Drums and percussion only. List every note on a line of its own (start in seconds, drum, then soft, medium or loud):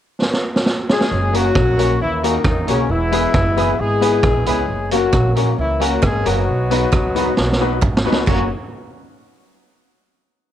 0.22 snare medium
0.33 snare medium
0.56 snare medium
0.66 snare medium
0.89 snare loud
1.01 snare medium
1.34 closed hi-hat medium
1.55 kick loud
1.55 cross-stick medium
1.79 closed hi-hat medium
2.24 closed hi-hat medium
2.44 kick loud
2.44 cross-stick loud
2.68 closed hi-hat medium
3.12 closed hi-hat medium
3.34 kick loud
3.34 cross-stick loud
3.57 closed hi-hat medium
4.02 closed hi-hat medium
4.23 kick loud
4.23 cross-stick loud
4.46 closed hi-hat medium
4.91 closed hi-hat medium
5.13 kick loud
5.13 cross-stick loud
5.13 clap medium
5.36 closed hi-hat medium
5.81 closed hi-hat medium
6.02 kick loud
6.02 cross-stick loud
6.02 clap loud
6.26 closed hi-hat medium
6.71 closed hi-hat medium
6.92 kick loud
6.92 cross-stick loud
6.92 clap loud
7.16 closed hi-hat medium
7.37 snare medium
7.52 snare soft
7.82 kick loud
7.82 clap loud
7.97 snare loud
8.12 snare medium
8.27 kick loud
8.27 clap medium
8.27 crash medium